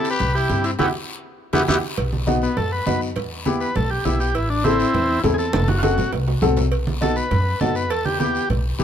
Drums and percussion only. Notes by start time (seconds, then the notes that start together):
0.05 high timbale, short guiro
0.19 high conga, low conga, high timbale, long guiro
0.49 high conga, high timbale, short guiro
0.64 high timbale, short guiro
0.79 high conga, high timbale, long guiro
1.53 high conga, high timbale, long guiro
1.67 high conga, high timbale, long guiro
1.97 cowbell, low conga, long guiro
2.13 high conga
2.27 high conga, short guiro
2.42 short guiro
2.57 cowbell, low conga, long guiro
2.86 high conga, low timbale, short guiro
3.01 short guiro
3.16 cowbell, low conga, long guiro
3.46 high conga, short guiro
3.60 short guiro
3.75 cowbell, low conga, long guiro
4.05 high conga, low timbale, short guiro
4.20 short guiro
4.35 cowbell, long guiro
4.65 high conga, short guiro
4.80 short guiro
4.94 cowbell, low conga, long guiro
5.24 high conga, low conga, low timbale, short guiro
5.38 short guiro
5.53 cowbell, high conga, high timbale, long guiro
5.68 high conga, high timbale
5.83 high conga, high timbale, short guiro
5.98 low conga, low timbale, short guiro
6.12 cowbell, low timbale, long guiro
6.28 low timbale
6.42 low conga, low timbale, short guiro
6.57 low conga, low timbale, short guiro
6.71 cowbell, long guiro
6.87 high conga
7.02 high conga, short guiro
7.16 short guiro
7.31 cowbell, low conga, long guiro
7.60 high conga, low conga, low timbale, short guiro
7.75 short guiro
7.90 cowbell, long guiro
8.06 high conga
8.20 high conga, short guiro
8.35 short guiro
8.50 cowbell, low conga, long guiro
8.79 high conga, low conga, short guiro